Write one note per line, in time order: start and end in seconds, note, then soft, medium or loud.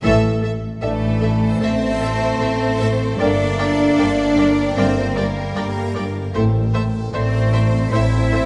0.02 0.70 A1 medium
0.02 0.27 A2 medium
0.02 0.40 E3 medium
0.02 0.40 A3 medium
0.02 3.14 A4 medium
0.02 0.40 A4 medium
0.02 3.15 C5 medium
0.02 3.15 E5 medium
0.02 0.40 E5 medium
0.42 0.66 A3 soft
0.42 0.50 A4 soft
0.42 0.51 E5 soft
0.81 1.52 A1 medium
0.81 1.06 A2 soft
0.81 1.57 E3 medium
0.81 1.57 A3 medium
0.81 3.15 D4 soft
0.81 0.90 A4 soft
0.81 1.57 A4 medium
0.81 3.15 D5 medium
0.81 0.90 E5 medium
1.21 1.45 A2 soft
1.21 1.29 A4 soft
1.21 1.31 E5 soft
1.60 2.31 A1 medium
1.60 1.85 A2 medium
1.60 1.89 E3 medium
1.60 1.90 A3 medium
1.60 3.16 A3 medium
1.60 3.19 C4 medium
1.60 1.68 A4 soft
1.60 3.16 C5 medium
1.60 1.70 E5 medium
2.00 2.24 A2 soft
2.00 2.08 A4 soft
2.00 2.09 E5 soft
2.40 3.09 A1 medium
2.40 2.64 A2 medium
2.40 2.48 A4 soft
2.40 2.49 E5 soft
2.79 3.03 A2 soft
2.79 2.88 A4 soft
2.79 2.88 E5 soft
3.18 3.88 G1 medium
3.18 3.42 G2 medium
3.18 3.48 D3 medium
3.18 4.73 A#3 medium
3.18 3.48 A#3 medium
3.18 4.74 D4 medium
3.18 3.27 A#4 medium
3.18 6.35 A#4 medium
3.18 3.27 D5 medium
3.18 4.75 D5 medium
3.18 6.35 G5 medium
3.18 3.27 G5 soft
3.58 3.82 G3 soft
3.58 3.66 A#4 soft
3.58 3.67 D5 medium
3.58 3.67 G5 medium
3.98 4.67 G1 medium
3.98 4.22 G2 soft
3.98 4.06 A#4 soft
3.98 4.06 D5 medium
3.98 4.06 G5 medium
4.37 4.61 G2 soft
4.37 4.46 A#4 soft
4.37 4.46 D5 soft
4.37 4.45 G5 medium
4.77 5.46 G1 medium
4.77 5.00 G2 medium
4.77 5.06 D3 medium
4.77 5.16 A#3 medium
4.77 5.05 A#3 medium
4.77 5.17 C4 medium
4.77 4.85 A#4 medium
4.77 5.17 C5 medium
4.77 4.85 D5 medium
4.77 7.10 E5 medium
4.77 4.86 G5 medium
5.16 5.40 G2 soft
5.16 6.35 G3 medium
5.16 6.35 A#3 medium
5.16 5.24 A#4 soft
5.16 6.35 A#4 medium
5.16 5.24 D5 soft
5.16 5.25 G5 medium
5.55 6.25 G1 medium
5.55 5.79 G2 medium
5.55 5.64 A#4 soft
5.55 5.64 D5 soft
5.55 5.63 G5 soft
5.95 6.19 G2 medium
5.95 6.03 A#4 soft
5.95 6.03 D5 soft
5.95 6.04 G5 soft
6.35 7.04 A1 medium
6.35 6.58 A2 medium
6.35 6.64 A2 medium
6.35 6.64 C4 medium
6.35 6.43 A4 medium
6.35 8.46 A4 medium
6.35 6.43 C5 medium
6.35 8.46 C5 soft
6.35 6.43 E5 soft
6.35 8.46 E5 medium
6.74 6.98 A3 medium
6.74 6.82 A4 medium
6.74 6.82 C5 medium
6.74 6.82 E5 medium
7.13 7.83 A1 medium
7.13 7.38 A2 soft
7.13 7.89 A3 medium
7.13 7.89 C4 medium
7.13 7.21 A4 medium
7.13 7.21 C5 medium
7.13 7.89 C5 medium
7.13 8.46 D5 medium
7.13 7.22 E5 medium
7.52 7.77 A2 medium
7.52 7.60 A4 medium
7.52 7.60 C5 medium
7.52 7.62 E5 medium
7.91 8.46 A1 medium
7.91 8.16 A2 medium
7.91 8.22 A2 medium
7.91 8.46 C4 medium
7.91 8.21 C4 medium
7.91 8.46 E4 medium
7.91 8.00 A4 medium
7.91 7.99 C5 medium
7.91 8.46 E5 medium
7.91 8.02 E5 medium
8.32 8.46 A2 medium
8.32 8.40 A4 soft
8.32 8.40 C5 soft
8.32 8.46 C5 soft
8.32 8.42 E5 medium